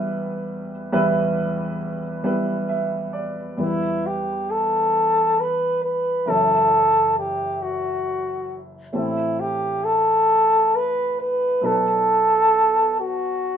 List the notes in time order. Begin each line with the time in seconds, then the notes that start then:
Already playing: E2 E3 G3 B3 E4 B4
0.92 E2 E3 G3 B3 E4 B4
2.24 G3 B3 E4 B4
2.69 E5
3.13 D5
3.57 E2 E3 G3 B3 E4 B4
4.06 G4
4.50 A4
5.40 B4
5.84 B4
6.26 F#1 F#2 E3 C#4 E4 A4
7.19 G4
7.62 F#4
8.93 A1 A2 A3 C4 E4 A4
9.40 G4
9.84 A4
10.75 B4
11.21 B4
11.61 B1 B2 F#3 B3 D#4 B4
11.65 A4
13.00 F#4